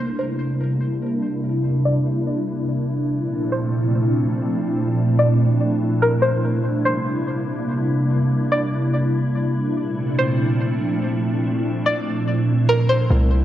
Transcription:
0.00 3.07 C3 medium
0.00 3.07 G3 medium
0.00 3.07 A#3 medium
0.00 9.73 D4 medium
0.00 6.40 E4 medium
0.19 0.58 C5 medium
1.85 2.24 D5 medium
3.10 6.40 A#2 medium
3.10 6.40 F3 medium
3.10 6.40 A3 medium
3.10 6.40 C4 medium
3.52 3.91 C5 medium
5.19 5.58 D5 medium
6.02 6.22 A#4 medium
6.22 6.42 C5 medium
6.44 9.74 C3 medium
6.44 9.74 G3 medium
6.44 9.74 A#3 medium
6.44 13.06 E4 medium
6.85 7.24 C5 medium
8.52 8.91 D5 medium
9.77 13.07 A#2 medium
9.77 13.07 F3 medium
9.77 13.07 A3 medium
9.77 13.07 C4 medium
9.77 13.07 D4 medium
10.19 10.58 C5 medium
11.86 12.25 D5 medium
12.69 12.89 A#4 medium
12.89 13.09 C5 medium
13.10 13.45 C2 loud
13.10 13.45 C3 medium
13.10 13.45 G3 medium
13.10 13.45 A#3 medium
13.10 13.45 D4 medium
13.10 13.45 E4 medium

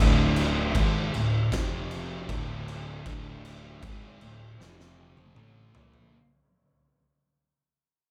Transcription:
0.00 0.71 D1 loud
0.00 0.74 D2 loud
0.00 0.74 A2 loud
0.00 0.74 D3 loud
0.00 1.51 F3 medium
0.00 1.50 D4 medium
0.00 1.51 E5 medium
0.36 crash medium
0.75 1.11 G#1 medium
0.75 1.13 G#2 medium
0.75 1.13 D#3 medium
0.75 1.14 G#3 loud
0.75 kick loud
0.75 crash medium
1.14 1.50 D1 medium
1.14 1.45 D2 medium
1.14 1.45 A2 medium
1.14 crash medium
1.52 2.25 F1 loud
1.52 2.28 F2 loud
1.52 2.29 C3 loud
1.52 2.28 F3 medium
1.52 2.29 F3 loud
1.52 2.29 C4 medium
1.52 2.28 G4 medium
1.52 kick loud
1.52 snare loud
1.52 crash loud
1.91 crash medium
2.28 3.02 D1 loud
2.28 3.05 D2 loud
2.28 3.05 A2 loud
2.28 3.06 D3 loud
2.28 4.57 F3 medium
2.28 4.57 D4 medium
2.28 4.57 E5 medium
2.28 kick loud
2.28 crash medium
2.68 crash medium
3.06 3.79 D1 loud
3.06 3.82 D2 loud
3.06 3.83 A2 loud
3.06 3.83 D3 loud
3.06 kick loud
3.06 crash medium
3.45 crash medium
3.82 4.19 G#1 medium
3.82 4.20 G#2 loud
3.82 4.20 D#3 loud
3.82 4.21 G#3 loud
3.82 kick loud
3.82 crash medium
4.21 4.57 D1 medium
4.21 4.52 D2 medium
4.21 4.52 A2 medium
4.21 crash medium
4.57 5.32 F1 loud
4.57 5.35 F2 loud
4.57 5.35 C3 medium
4.57 5.35 F3 medium
4.57 5.36 F3 loud
4.57 5.35 C4 medium
4.57 5.35 G4 medium
4.57 snare medium
4.80 snare medium
5.17 high tom medium
5.36 5.72 A1 loud
5.36 5.73 A2 loud
5.36 6.13 D3 medium
5.36 5.74 E3 loud
5.36 5.74 A3 loud
5.36 6.13 E4 medium
5.36 6.12 A4 medium
5.36 mid tom medium
5.74 6.11 A#1 loud
5.74 6.12 A#2 medium
5.74 6.12 F3 medium
5.74 6.12 A#3 loud
5.74 floor tom loud
5.93 floor tom medium

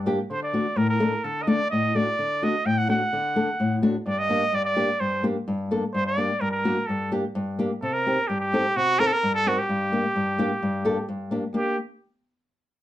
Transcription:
0.00 0.18 G2 medium
0.06 0.18 A#3 medium
0.06 0.18 D4 medium
0.06 0.18 G4 loud
0.30 0.65 D3 medium
0.30 0.41 C5 medium
0.43 0.79 D5 medium
0.53 0.66 A3 medium
0.53 0.66 D4 medium
0.53 0.65 F#4 medium
0.76 1.12 A2 medium
0.76 0.88 A#4 medium
0.89 1.26 A#4 medium
1.00 1.12 A3 medium
1.00 1.12 D4 medium
1.00 1.13 A4 medium
1.24 1.59 D3 medium
1.24 1.44 A4 medium
1.42 1.50 D#5 medium
1.47 1.59 A3 loud
1.47 1.60 D4 medium
1.47 1.60 A4 medium
1.47 1.70 D5 loud
1.71 2.07 A2 medium
1.71 1.97 D#5 medium
1.95 2.07 A3 medium
1.95 2.07 D4 medium
1.95 2.07 F#4 medium
1.95 2.45 D5 loud
2.19 2.54 D3 medium
2.42 2.54 A3 medium
2.42 2.54 D4 medium
2.42 2.54 F#4 medium
2.42 2.68 D#5 medium
2.65 3.01 A2 medium
2.65 2.80 G5 loud
2.78 2.89 F#5 loud
2.88 3.01 A3 medium
2.88 3.01 D4 medium
2.88 3.01 F#4 medium
2.88 3.80 F#5 loud
3.13 3.48 D3 medium
3.36 3.48 A3 medium
3.36 3.48 D4 medium
3.36 3.48 A4 medium
3.60 3.95 A2 medium
3.82 3.95 A3 medium
3.82 3.95 D4 medium
3.82 3.95 F#4 loud
4.06 4.42 G2 medium
4.06 4.20 D5 loud
4.19 4.56 D#5 loud
4.29 4.42 A#3 medium
4.29 4.42 D4 medium
4.29 4.42 G4 medium
4.52 4.88 G2 medium
4.52 4.65 D5 loud
4.65 5.02 D5 loud
4.76 4.89 A#3 medium
4.76 4.89 D4 medium
4.76 4.89 G4 loud
5.00 5.36 G2 medium
5.00 5.24 C5 medium
5.23 5.36 A#3 medium
5.23 5.36 D4 medium
5.23 5.36 G4 medium
5.48 5.83 G2 medium
5.71 5.83 A#3 medium
5.71 5.83 D4 medium
5.71 5.83 A4 loud
5.94 6.29 G2 medium
5.94 6.05 C5 loud
6.07 6.42 D5 loud
6.17 6.30 A#3 medium
6.17 6.30 D4 medium
6.17 6.30 G4 medium
6.41 6.76 G2 medium
6.41 6.51 A#4 medium
6.51 6.88 A#4 medium
6.65 6.77 A#3 medium
6.65 6.77 D4 medium
6.65 6.77 F#4 loud
6.87 7.24 G2 medium
6.87 7.11 A4 medium
7.12 7.23 A#3 medium
7.12 7.24 D4 medium
7.12 7.24 G4 loud
7.35 7.70 G2 medium
7.59 7.70 A#3 medium
7.59 7.71 D4 medium
7.59 7.71 G4 medium
7.82 8.17 C3 medium
7.82 7.95 A4 loud
7.93 8.29 A#4 loud
8.06 8.18 C4 medium
8.06 8.18 D#4 medium
8.06 8.18 G4 medium
8.28 8.64 G2 medium
8.28 8.40 G4 medium
8.40 8.78 G4 loud
8.53 8.64 C4 medium
8.53 8.65 D#4 medium
8.53 8.65 A4 medium
8.76 9.11 C3 medium
8.76 9.00 F#4 loud
8.99 9.11 C4 medium
8.99 9.11 D#4 medium
8.99 9.11 A4 loud
8.99 9.08 A#4 loud
9.07 9.14 A4 loud
9.13 9.34 A#4 loud
9.23 9.57 G2 medium
9.34 9.49 A4 loud
9.46 9.58 C4 medium
9.46 9.58 D#4 medium
9.46 9.60 F#4 loud
9.46 9.58 A#4 medium
9.59 11.09 G4 loud
9.69 10.04 G2 medium
9.92 10.04 A#3 medium
9.92 10.04 D4 medium
9.92 10.04 G4 medium
10.16 10.50 G2 medium
10.38 10.50 A#3 loud
10.38 10.50 D4 medium
10.38 10.50 G4 loud
10.63 10.97 G2 medium
10.85 10.97 A#3 loud
10.85 10.97 D4 medium
10.85 10.97 A4 loud
11.09 11.43 G2 medium
11.31 11.43 A#3 medium
11.31 11.43 D4 medium
11.31 11.44 G4 medium
11.54 11.76 A#3 medium
11.54 11.76 D4 medium
11.54 11.76 G4 medium
11.54 11.77 G4 medium

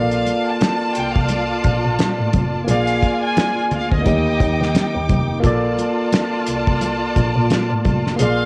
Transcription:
0.00 0.22 A#1 medium
0.00 2.62 A#3 medium
0.00 2.63 F4 soft
0.00 2.64 F4 medium
0.00 2.64 A4 medium
0.00 2.64 D5 medium
0.00 2.65 D5 medium
0.00 0.44 F5 medium
0.00 2.64 A5 medium
0.11 closed hi-hat soft
0.26 closed hi-hat medium
0.26 muted conga soft
0.47 0.96 A5 medium
0.61 snare medium
0.61 closed hi-hat medium
0.61 high conga medium
0.95 1.11 C2 soft
0.95 1.16 G5 medium
0.95 closed hi-hat medium
1.16 1.45 C2 medium
1.16 1.85 F5 medium
1.16 kick medium
1.28 closed hi-hat medium
1.28 muted conga soft
1.64 1.82 A#1 medium
1.64 kick medium
1.64 closed hi-hat medium
1.85 1.97 A#2 medium
1.99 snare medium
1.99 closed hi-hat medium
1.99 high conga medium
2.19 2.31 A2 medium
2.33 2.63 F1 medium
2.33 kick medium
2.33 closed hi-hat medium
2.33 high conga medium
2.65 2.98 A#1 medium
2.65 4.01 A#3 medium
2.65 4.02 F4 medium
2.65 4.03 F4 medium
2.65 4.03 D5 medium
2.65 4.03 G#5 medium
2.65 closed hi-hat medium
2.65 muted conga soft
2.69 4.03 G#4 soft
2.69 4.04 D5 medium
2.69 3.19 F5 medium
2.87 closed hi-hat soft
3.02 kick medium
3.02 closed hi-hat soft
3.02 muted conga soft
3.24 3.69 G#5 medium
3.37 snare loud
3.37 closed hi-hat medium
3.37 high conga medium
3.71 3.86 D2 soft
3.71 3.92 F5 medium
3.71 closed hi-hat medium
3.71 low conga medium
3.92 4.04 D2 medium
3.92 4.92 D#5 medium
3.92 kick medium
4.02 5.39 A#3 medium
4.02 5.40 D#4 medium
4.02 5.41 D#4 medium
4.02 5.41 G4 medium
4.02 5.41 G5 medium
4.02 5.41 D6 medium
4.02 kick medium
4.02 closed hi-hat medium
4.02 muted conga medium
4.06 4.36 D#2 medium
4.06 5.42 D#5 medium
4.40 4.58 D#2 medium
4.40 kick medium
4.40 closed hi-hat medium
4.40 low conga medium
4.61 4.73 D#3 medium
4.61 snare soft
4.75 snare medium
4.75 closed hi-hat medium
4.75 high conga medium
4.95 5.07 D#2 medium
5.09 5.39 F1 medium
5.09 kick medium
5.09 closed hi-hat medium
5.09 high conga medium
5.40 8.14 A#3 medium
5.40 8.15 F4 medium
5.40 8.16 F4 medium
5.40 8.16 D5 medium
5.40 8.16 A5 medium
5.40 kick loud
5.40 muted conga soft
5.44 5.74 A#1 medium
5.44 8.16 A4 medium
5.44 8.17 D5 medium
5.44 closed hi-hat medium
5.78 closed hi-hat medium
5.78 muted conga soft
6.12 snare loud
6.12 closed hi-hat medium
6.12 high conga medium
6.46 6.62 C2 soft
6.46 closed hi-hat medium
6.67 6.97 C2 medium
6.67 kick medium
6.81 closed hi-hat medium
6.81 muted conga soft
7.16 7.34 A#1 medium
7.16 kick medium
7.16 closed hi-hat medium
7.36 7.48 A#2 medium
7.50 snare medium
7.50 closed hi-hat medium
7.50 high conga medium
7.70 7.83 A2 medium
7.85 8.15 F1 medium
7.85 kick medium
7.85 closed hi-hat medium
7.85 high conga medium
8.07 snare soft
8.16 8.45 A#1 medium
8.16 8.45 A#3 medium
8.16 8.45 F4 soft
8.16 8.45 G#4 medium
8.16 8.45 F5 medium
8.16 8.45 C6 medium
8.16 closed hi-hat medium
8.20 8.45 G#4 medium
8.20 8.45 D5 medium
8.20 8.45 F5 medium
8.20 muted conga soft

